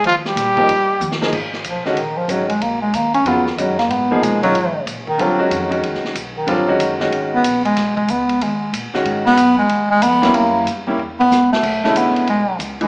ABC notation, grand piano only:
X:1
M:4/4
L:1/8
Q:"Swing" 1/4=186
K:Ebmix
V:1 name="Grand piano"
z3 [F,B,EG] z3 [F,B,EA] | [K:G#dor] z3 [D,G,CF] z2 [D,G,CF] z | z4 [C,F,B,E] z [D,G,CF] z | z [E,A,DG]2 [D,G,CE] z4 |
[=D,=G,^B,E] [^D,^G,CF]2 [D,G,CF]3 z2 | [=D,=G,^B,E] [^D,^G,CF]2 [D,G,CF]3 z2 | z6 z [D,G,CF]- | [D,G,CF]2 z4 z [=G,A,C=E]- |
[=G,A,C=E]2 z [G,A,CE] z4 | [K:Bdor] z [D,G,CE]3 z3 [E,A,DE] |]